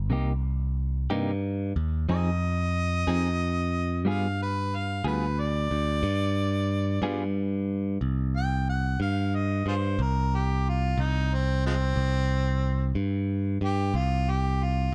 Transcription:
0.00 0.12 G1 medium
0.10 1.07 C2 medium
0.10 0.31 C3 medium
0.10 0.31 A#3 medium
0.10 0.32 D#4 medium
0.10 0.32 G4 medium
1.10 1.72 G2 medium
1.10 1.31 C3 medium
1.10 1.31 A#3 medium
1.10 1.30 D#4 medium
1.10 1.30 G4 medium
1.76 2.06 D#2 medium
2.09 3.04 F2 loud
2.09 2.29 F3 medium
2.09 2.29 C4 medium
2.09 2.29 D#4 medium
2.09 2.30 G#4 medium
2.09 4.04 D#5 loud
3.07 4.06 F2 loud
3.07 3.29 F3 medium
3.07 3.28 C4 medium
3.07 3.28 D#4 medium
3.07 3.28 G#4 medium
4.05 5.01 G2 loud
4.05 4.26 G3 medium
4.05 4.26 B3 medium
4.05 4.26 F4 medium
4.05 4.27 G#4 medium
4.10 4.40 F5 medium
4.42 4.77 B4 medium
4.75 5.06 F5 medium
5.04 5.67 D2 medium
5.04 5.26 G3 medium
5.04 5.26 B3 medium
5.04 5.25 F4 medium
5.04 5.25 G#4 medium
5.04 5.41 B4 medium
5.40 7.33 D5 loud
5.71 6.01 D2 medium
6.03 6.98 G2 loud
7.02 7.97 G2 loud
7.02 7.24 G3 medium
7.02 7.23 B3 medium
7.02 7.23 F4 medium
7.02 7.23 G#4 medium
8.01 8.96 C2 medium
8.36 8.67 G5 medium
8.69 9.00 F#5 medium
9.00 9.62 G2 medium
9.00 9.37 F5 medium
9.35 9.66 D#5 medium
9.66 9.96 G2 medium
9.66 9.75 F4 medium
9.66 9.75 G#4 medium
9.66 10.03 C5 medium
9.99 10.94 C2 loud
9.99 10.37 A#4 medium
10.35 10.70 G4 medium
10.69 11.02 F4 medium
10.98 11.93 C2 loud
10.98 11.36 D#4 medium
11.34 11.65 C4 medium
11.67 11.73 F3 medium
11.67 11.75 G#3 medium
11.67 12.93 C4 loud
11.96 12.91 C2 medium
12.95 13.57 G2 medium
13.61 13.92 G2 medium
13.61 13.98 G4 medium
13.94 14.89 C2 loud
13.94 14.31 F4 medium
14.30 14.65 G4 medium
14.64 14.95 F4 medium

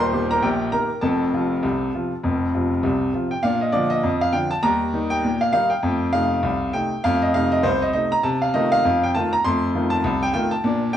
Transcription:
0.00 0.45 D#1 medium
0.00 0.45 D#2 loud
0.00 0.28 C5 medium
0.00 0.30 C6 medium
0.13 0.29 D#3 medium
0.13 0.30 A#3 medium
0.13 0.30 G4 medium
0.31 0.43 A#4 medium
0.31 0.43 A#5 medium
0.42 0.68 A#1 medium
0.42 0.68 A#2 medium
0.42 0.71 G4 medium
0.42 0.73 G5 medium
0.72 0.89 D#3 soft
0.72 0.89 A#3 medium
0.72 0.90 G4 soft
0.72 1.01 A#4 medium
0.72 1.03 A#5 medium
1.01 1.28 F1 medium
1.01 1.28 F2 medium
1.01 3.10 A4 medium
1.01 3.13 A5 medium
1.33 1.50 C3 medium
1.33 1.50 F3 medium
1.33 1.50 F4 medium
1.63 1.89 C2 medium
1.63 1.89 C3 medium
1.94 2.11 C3 soft
1.94 2.11 F3 soft
1.94 2.11 F4 medium
2.24 2.49 F1 medium
2.24 2.49 F2 medium
2.54 2.70 C3 soft
2.54 2.70 F3 soft
2.54 2.71 F4 medium
2.83 3.09 C2 medium
2.83 3.09 C3 medium
3.14 3.30 C3 medium
3.14 3.31 F3 soft
3.14 3.31 F4 soft
3.31 3.44 G5 medium
3.43 3.69 A#2 loud
3.43 3.62 D4 medium
3.43 3.61 F5 medium
3.61 3.74 D#5 medium
3.72 3.90 D3 medium
3.72 3.90 F3 medium
3.72 3.91 F4 medium
3.72 3.91 D5 medium
3.90 4.21 D#5 loud
4.03 4.29 F2 medium
4.21 4.34 F5 loud
4.33 4.50 D3 medium
4.33 4.50 F3 medium
4.33 4.51 F4 medium
4.33 4.51 G5 medium
4.51 4.64 A5 loud
4.63 4.89 D#2 loud
4.63 4.81 G3 medium
4.63 5.11 A#5 loud
4.94 5.10 D#3 medium
4.94 5.11 G3 medium
4.94 5.11 D#4 medium
5.10 5.41 G5 loud
5.24 5.50 A#2 medium
5.41 5.51 F5 medium
5.53 5.70 D#3 medium
5.53 5.70 G3 medium
5.53 5.71 D#4 medium
5.53 5.71 F5 loud
5.70 6.13 G5 medium
5.83 6.09 F2 loud
5.83 6.01 A3 medium
6.13 6.30 C3 medium
6.13 6.30 A3 medium
6.13 6.30 D#4 medium
6.13 6.73 F5 loud
6.43 6.69 C2 medium
6.73 6.91 C3 soft
6.73 6.91 A3 medium
6.73 6.91 D#4 medium
6.73 7.04 G5 medium
7.04 7.30 F2 loud
7.04 7.22 A3 medium
7.04 7.21 F5 loud
7.22 7.35 D#5 medium
7.34 7.51 C3 medium
7.34 7.51 A3 medium
7.34 7.52 D#4 medium
7.34 7.52 F5 loud
7.52 7.64 D#5 medium
7.63 7.90 C2 medium
7.63 7.81 C5 loud
7.82 7.92 D#5 medium
7.93 8.10 C3 medium
7.93 8.11 A3 medium
7.93 8.11 D#4 medium
7.93 8.11 D#5 medium
8.12 8.24 A#5 loud
8.23 8.49 C3 loud
8.23 8.41 A5 medium
8.42 8.54 F5 medium
8.54 8.71 D#3 medium
8.54 8.71 A3 medium
8.54 8.72 F4 medium
8.54 8.71 D#5 loud
8.72 9.02 F5 loud
8.85 9.10 F2 medium
9.03 9.15 G5 loud
9.15 9.32 D#3 medium
9.15 9.32 A3 medium
9.15 9.32 F4 medium
9.15 9.32 A5 loud
9.33 9.45 A#5 loud
9.45 9.70 F2 medium
9.45 9.63 A3 medium
9.45 9.92 C6 loud
9.75 9.91 D#3 medium
9.75 9.91 A3 medium
9.75 9.91 F4 medium
9.90 10.21 A5 loud
10.04 10.30 C2 medium
10.23 10.32 G5 loud
10.34 10.51 D#3 medium
10.34 10.51 A3 medium
10.34 10.51 F4 medium
10.34 10.51 G5 loud
10.51 10.94 A5 medium
10.64 10.89 A#2 loud
10.64 10.82 D4 medium
10.93 10.97 D3 medium
10.93 10.97 G5 loud

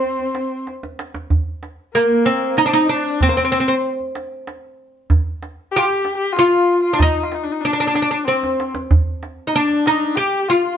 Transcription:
0.00 0.63 C4 medium
0.00 0.68 C4 medium
0.04 tombak ka soft
0.19 tombak ka soft
0.35 tombak tek medium
0.67 tombak tek soft
0.83 tombak ka medium
0.99 tombak tek medium
1.14 tombak ka medium
1.30 tombak dum medium
1.63 tombak tek medium
1.95 2.61 A#3 medium
1.95 2.27 A#3 medium
2.10 tombak ka soft
2.25 2.57 C4 medium
2.25 tombak tek medium
2.57 2.64 D#4 medium
2.57 2.70 D#4 medium
2.57 tombak tek medium
2.66 2.72 D4 medium
2.71 2.91 D#4 medium
2.71 2.89 D#4 medium
2.89 3.18 D4 medium
2.89 3.23 D4 medium
3.21 3.30 C4 medium
3.21 3.28 C4 medium
3.21 tombak dum medium
3.29 3.36 A#3 medium
3.29 3.35 C4 medium
3.35 3.84 C4 medium
3.35 3.43 C4 medium
3.45 3.51 C4 medium
3.52 3.58 C4 medium
3.52 tombak tek medium
3.60 3.66 C4 medium
3.68 3.74 C4 medium
4.00 tombak ka soft
4.15 tombak tek medium
4.47 tombak tek medium
5.10 tombak dum medium
5.43 tombak tek medium
5.72 5.80 G4 medium
5.76 5.86 F4 medium
5.76 6.38 G4 loud
5.85 6.17 G4 medium
5.90 tombak ka soft
6.05 tombak tek medium
6.17 6.35 G4 medium
6.33 6.82 F4 medium
6.33 tombak tek medium
6.39 6.90 F4 medium
6.82 7.00 F4 medium
6.93 7.00 D4 medium
6.99 7.24 D#4 medium
6.99 7.65 D#4 medium
6.99 tombak dum medium
7.23 7.35 F4 medium
7.32 7.45 D#4 medium
7.32 tombak tek medium
7.43 7.53 D4 medium
7.52 7.62 D#4 medium
7.61 8.26 D4 medium
7.61 tombak ka soft
7.65 7.71 D4 medium
7.73 7.79 D4 medium
7.80 7.86 D4 medium
7.87 7.94 D4 medium
7.95 8.01 D4 medium
7.95 tombak tek medium
8.02 8.09 D4 medium
8.11 8.17 D4 medium
8.25 8.73 C4 medium
8.25 8.71 C4 medium
8.25 tombak tek soft
8.43 tombak ka medium
8.60 tombak tek medium
8.75 tombak ka medium
8.91 tombak dum medium
9.23 tombak tek medium
9.47 9.54 D#4 medium
9.52 10.17 D4 medium
9.52 9.87 D4 medium
9.70 tombak ka soft
9.86 10.17 D#4 medium
9.86 tombak tek medium
10.16 10.50 G4 medium
10.16 10.49 G4 medium
10.16 tombak tek medium
10.48 10.72 F4 medium
10.48 10.77 F4 medium
10.72 10.77 F4 medium

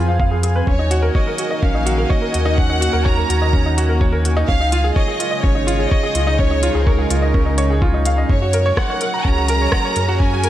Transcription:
0.00 0.62 F2 medium
0.00 0.67 F3 medium
0.00 0.68 C4 medium
0.00 0.70 F4 medium
0.00 0.31 G#4 medium
0.00 2.19 G#4 medium
0.00 0.56 B4 medium
0.00 0.08 F5 medium
0.00 0.69 G#5 medium
0.00 9.80 G#5 medium
0.00 0.70 B5 medium
0.08 0.15 F5 medium
0.20 0.31 F5 medium
0.20 kick medium
0.31 0.38 G#4 medium
0.43 0.55 G#4 medium
0.43 closed hi-hat medium
0.56 0.67 B4 medium
0.67 1.10 D#2 medium
0.67 4.49 D#3 medium
0.67 0.74 C#4 medium
0.67 1.12 C#5 medium
0.67 kick medium
0.72 5.75 A#3 medium
0.79 0.91 D#4 medium
0.91 0.98 F#4 medium
0.91 closed hi-hat medium
1.02 1.14 A#4 medium
1.15 1.26 C#5 medium
1.15 1.59 D#5 medium
1.15 kick medium
1.26 4.49 F#4 medium
1.26 1.39 A#4 medium
1.38 1.50 F#4 medium
1.38 closed hi-hat medium
1.51 1.62 D#5 medium
1.62 2.05 A#1 medium
1.62 1.69 C#4 medium
1.62 2.10 F5 medium
1.62 kick loud
1.75 1.86 D#4 medium
1.86 1.93 F#4 medium
1.86 closed hi-hat medium
1.98 2.10 A#4 medium
2.10 2.21 C#5 medium
2.10 2.58 D#5 loud
2.10 kick loud
2.22 2.33 A#4 medium
2.33 2.89 D#2 medium
2.33 2.45 F#4 medium
2.33 closed hi-hat medium
2.45 2.53 D#4 loud
2.57 2.64 C#4 medium
2.57 3.05 F#5 loud
2.57 kick loud
2.69 2.81 D#4 medium
2.81 2.88 F#4 medium
2.81 closed hi-hat medium
2.93 3.24 D#2 medium
2.93 3.05 A#4 loud
3.05 3.17 C#5 medium
3.05 4.01 A#5 loud
3.05 kick loud
3.17 3.29 A#4 medium
3.29 4.44 D#2 medium
3.29 3.41 F#4 medium
3.29 closed hi-hat medium
3.42 3.53 D#5 medium
3.53 3.60 C#4 medium
3.53 kick medium
3.66 3.77 D#4 medium
3.78 3.84 F#4 medium
3.78 closed hi-hat medium
3.89 4.00 A#4 medium
4.01 4.12 C#5 medium
4.01 kick loud
4.12 4.24 A#4 medium
4.25 4.36 F#4 medium
4.25 closed hi-hat medium
4.37 4.43 D#4 loud
4.48 4.91 C#2 medium
4.48 8.29 C#3 medium
4.48 4.55 C#4 medium
4.48 4.93 F5 loud
4.48 kick loud
4.60 8.29 G#3 medium
4.60 4.72 D#4 medium
4.72 4.79 F4 medium
4.72 closed hi-hat medium
4.84 4.96 G#4 medium
4.93 9.82 D#4 medium
4.93 5.07 C#5 medium
4.93 5.40 D#5 loud
4.93 kick loud
5.08 5.19 G#4 medium
5.19 5.31 F4 medium
5.19 closed hi-hat medium
5.31 5.43 D#5 medium
5.43 5.86 G#1 medium
5.43 5.50 C#4 medium
5.43 5.91 C#5 loud
5.43 kick loud
5.55 5.67 D#4 medium
5.67 5.74 F4 medium
5.67 closed hi-hat medium
5.79 5.91 G#4 medium
5.90 6.03 C#5 medium
5.90 6.38 D#5 loud
5.90 kick loud
6.03 6.15 G#4 medium
6.15 6.69 C#2 medium
6.15 6.27 F4 medium
6.15 closed hi-hat medium
6.27 6.34 D#4 medium
6.38 6.46 C#4 medium
6.38 6.86 C#5 loud
6.38 kick loud
6.51 6.62 D#4 medium
6.63 6.70 F4 medium
6.63 closed hi-hat medium
6.75 7.05 C#2 medium
6.75 6.86 G#4 medium
6.86 7.82 A#4 medium
6.86 6.98 C#5 medium
6.86 kick loud
6.99 7.10 G#4 medium
7.10 8.24 C#2 medium
7.10 7.22 F4 medium
7.10 closed hi-hat medium
7.22 7.34 D#5 medium
7.34 7.41 C#4 medium
7.34 kick loud
7.46 7.57 D#4 medium
7.58 7.69 C#5 medium
7.58 closed hi-hat medium
7.70 7.81 G#4 medium
7.82 7.93 F4 medium
7.82 kick loud
7.94 8.05 D#4 medium
8.05 8.17 F5 medium
8.05 closed hi-hat medium
8.18 8.25 D#5 medium
8.29 8.72 F#2 medium
8.29 10.49 F#3 medium
8.29 8.36 C#4 medium
8.29 8.74 C#5 loud
8.29 kick medium
8.39 8.53 F#4 medium
8.39 10.49 G#4 medium
8.51 10.49 C#4 medium
8.51 8.60 A#4 medium
8.51 closed hi-hat medium
8.66 8.77 C#5 medium
8.66 10.49 A#5 medium
8.77 9.25 F#5 loud
8.77 8.89 F#5 medium
8.77 kick loud
8.77 cross-stick medium
8.90 9.01 C#5 medium
9.01 9.13 A#4 medium
9.01 closed hi-hat medium
9.14 9.25 A#5 medium
9.24 9.67 C#2 medium
9.24 9.32 C#4 medium
9.24 10.20 A#5 loud
9.24 kick loud
9.38 9.48 F#4 medium
9.48 9.56 A#4 medium
9.48 closed hi-hat medium
9.62 9.72 C#5 medium
9.72 9.84 F#5 medium
9.72 kick loud
9.72 cross-stick medium
9.85 9.96 C#5 medium
9.96 10.49 F#2 medium
9.96 10.08 A#4 medium
9.96 closed hi-hat medium
10.08 10.15 F#4 loud
10.19 10.27 C#4 medium
10.19 10.49 G#5 loud
10.19 kick loud
10.33 10.44 F#4 medium
10.44 10.49 A#4 medium
10.44 closed hi-hat medium

